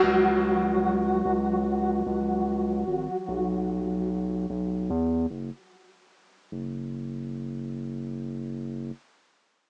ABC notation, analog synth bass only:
X:1
M:4/4
L:1/8
Q:"Swing 16ths" 1/4=74
K:Bdor
V:1 name="Analog synth bass" clef=bass
C,,3 C,,2 C,,2 G,,, | B,,,3 B,,, E,, F,,, z2 | F,,,6 z2 |]